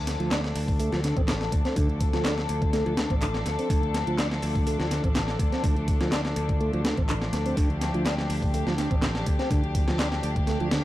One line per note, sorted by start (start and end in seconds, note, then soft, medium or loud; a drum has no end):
0.00 0.16 D2 loud
0.00 10.84 F3 medium
0.00 10.84 A3 medium
0.00 10.84 D4 medium
0.00 7.53 A4 medium
0.07 snare medium
0.07 closed hi-hat medium
0.20 0.52 D2 medium
0.20 0.31 F3 medium
0.20 closed hi-hat soft
0.31 0.41 D4 medium
0.31 snare loud
0.31 clap loud
0.31 closed hi-hat medium
0.31 closed hi-hat soft
0.44 snare medium
0.44 closed hi-hat soft
0.55 0.88 D2 medium
0.55 closed hi-hat medium
0.55 open hi-hat medium
0.68 kick loud
0.68 closed hi-hat soft
0.79 0.91 A3 medium
0.79 closed hi-hat medium
0.79 closed hi-hat soft
0.92 1.11 D2 medium
0.92 1.01 F3 loud
0.92 snare soft
0.92 closed hi-hat soft
1.04 1.15 D3 medium
1.04 snare soft
1.04 closed hi-hat medium
1.17 1.48 A1 medium
1.17 1.22 C4 medium
1.17 kick loud
1.17 closed hi-hat soft
1.28 1.34 D3 medium
1.28 snare loud
1.28 clap loud
1.28 closed hi-hat medium
1.28 closed hi-hat soft
1.41 snare medium
1.41 closed hi-hat soft
1.52 1.62 D2 medium
1.52 kick loud
1.52 closed hi-hat medium
1.65 1.75 C4 medium
1.65 snare soft
1.65 closed hi-hat soft
1.76 2.09 D2 loud
1.76 1.89 D3 medium
1.76 kick loud
1.76 closed hi-hat medium
1.76 closed hi-hat soft
1.89 closed hi-hat soft
2.00 kick medium
2.00 closed hi-hat medium
2.13 2.45 D2 medium
2.13 2.24 F3 medium
2.13 snare medium
2.13 closed hi-hat soft
2.25 2.34 D4 medium
2.25 snare loud
2.25 clap loud
2.25 closed hi-hat medium
2.25 closed hi-hat soft
2.38 snare medium
2.38 closed hi-hat soft
2.49 2.82 D2 medium
2.49 closed hi-hat medium
2.62 kick medium
2.62 closed hi-hat soft
2.73 2.85 A3 medium
2.73 snare soft
2.73 closed hi-hat medium
2.73 closed hi-hat soft
2.86 3.05 D2 loud
2.86 2.94 F3 loud
2.86 closed hi-hat soft
2.97 3.09 D3 medium
2.97 snare loud
2.97 closed hi-hat medium
3.10 3.42 A1 medium
3.10 3.15 C4 medium
3.10 kick loud
3.10 closed hi-hat soft
3.22 3.27 D3 medium
3.22 clap loud
3.22 closed hi-hat medium
3.22 closed hi-hat soft
3.34 snare soft
3.34 closed hi-hat soft
3.46 3.56 D2 medium
3.46 snare soft
3.46 closed hi-hat medium
3.59 3.69 C4 medium
3.59 closed hi-hat soft
3.70 4.03 D2 loud
3.70 3.82 D3 medium
3.70 kick loud
3.70 closed hi-hat medium
3.70 closed hi-hat soft
3.83 closed hi-hat soft
3.94 snare medium
3.94 closed hi-hat medium
4.07 4.39 D2 medium
4.07 4.18 F3 medium
4.07 closed hi-hat soft
4.19 4.28 D4 medium
4.19 snare loud
4.19 clap loud
4.19 closed hi-hat medium
4.19 closed hi-hat soft
4.31 snare medium
4.31 closed hi-hat soft
4.42 4.75 D2 medium
4.42 closed hi-hat medium
4.42 open hi-hat medium
4.55 kick loud
4.55 closed hi-hat soft
4.67 4.78 A3 medium
4.67 closed hi-hat medium
4.67 closed hi-hat soft
4.80 4.99 D2 medium
4.80 4.88 F3 loud
4.80 snare soft
4.80 closed hi-hat soft
4.91 5.03 D3 medium
4.91 snare soft
4.91 closed hi-hat medium
5.04 5.36 A1 medium
5.04 5.09 C4 medium
5.04 kick loud
5.04 closed hi-hat soft
5.15 5.21 D3 medium
5.15 snare loud
5.15 clap loud
5.15 closed hi-hat medium
5.15 closed hi-hat soft
5.28 snare medium
5.28 closed hi-hat soft
5.39 5.50 D2 medium
5.39 kick loud
5.39 closed hi-hat medium
5.52 5.63 C4 medium
5.52 snare soft
5.52 closed hi-hat soft
5.64 5.96 D2 loud
5.64 5.76 D3 medium
5.64 kick loud
5.64 closed hi-hat medium
5.64 closed hi-hat soft
5.77 closed hi-hat soft
5.88 kick medium
5.88 closed hi-hat medium
6.01 6.33 D2 medium
6.01 6.12 F3 medium
6.01 snare medium
6.01 closed hi-hat soft
6.12 6.21 D4 medium
6.12 snare loud
6.12 clap loud
6.12 closed hi-hat medium
6.12 closed hi-hat soft
6.25 snare medium
6.25 closed hi-hat soft
6.36 6.69 D2 medium
6.36 closed hi-hat medium
6.49 kick medium
6.49 closed hi-hat soft
6.61 6.72 A3 medium
6.61 closed hi-hat soft
6.73 6.92 D2 medium
6.73 6.82 F3 loud
6.73 closed hi-hat soft
6.85 6.96 D3 medium
6.85 snare loud
6.85 closed hi-hat medium
6.97 7.29 A1 medium
6.97 7.03 C4 medium
6.97 kick loud
6.97 closed hi-hat soft
7.09 7.14 D3 medium
7.09 clap loud
7.09 closed hi-hat medium
7.09 closed hi-hat soft
7.22 snare soft
7.22 closed hi-hat soft
7.33 7.52 D2 medium
7.33 snare soft
7.33 closed hi-hat medium
7.46 7.56 C4 medium
7.46 closed hi-hat soft
7.57 7.90 D2 loud
7.57 7.69 D3 medium
7.57 10.84 G4 medium
7.57 kick loud
7.57 closed hi-hat medium
7.57 closed hi-hat soft
7.70 closed hi-hat soft
7.81 snare soft
7.81 closed hi-hat medium
7.94 8.26 D2 medium
7.94 8.05 F3 medium
7.94 closed hi-hat soft
8.06 8.15 D4 medium
8.06 snare loud
8.06 clap loud
8.06 closed hi-hat medium
8.06 closed hi-hat soft
8.18 snare medium
8.18 closed hi-hat soft
8.30 8.62 D2 medium
8.30 closed hi-hat medium
8.30 open hi-hat medium
8.42 kick loud
8.42 closed hi-hat soft
8.54 8.66 A3 medium
8.54 closed hi-hat medium
8.54 closed hi-hat soft
8.67 8.86 D2 medium
8.67 8.75 F3 loud
8.67 snare soft
8.67 closed hi-hat soft
8.78 8.90 D3 medium
8.78 snare soft
8.78 closed hi-hat medium
8.91 9.23 A1 medium
8.91 8.96 C4 medium
8.91 kick loud
8.91 closed hi-hat soft
9.02 9.08 D3 medium
9.02 snare loud
9.02 clap loud
9.02 closed hi-hat medium
9.02 closed hi-hat soft
9.15 snare medium
9.15 closed hi-hat soft
9.26 9.37 D2 medium
9.26 kick medium
9.26 closed hi-hat medium
9.39 9.50 C4 medium
9.39 snare soft
9.39 closed hi-hat soft
9.51 9.83 D2 loud
9.51 9.63 D3 medium
9.51 kick loud
9.51 closed hi-hat soft
9.51 closed hi-hat medium
9.64 closed hi-hat soft
9.75 kick loud
9.75 closed hi-hat medium
9.87 10.19 D2 medium
9.87 9.99 F3 medium
9.87 snare medium
9.87 closed hi-hat soft
9.99 10.08 D4 medium
9.99 snare loud
9.99 clap loud
9.99 closed hi-hat medium
9.99 closed hi-hat soft
10.12 snare medium
10.12 closed hi-hat soft
10.23 10.56 D2 medium
10.23 closed hi-hat medium
10.36 kick loud
10.36 closed hi-hat soft
10.47 10.59 A3 medium
10.47 snare soft
10.47 closed hi-hat medium
10.47 closed hi-hat soft
10.60 10.79 D2 loud
10.60 10.69 F3 loud
10.60 closed hi-hat soft
10.71 10.83 D3 medium
10.71 snare loud
10.71 closed hi-hat medium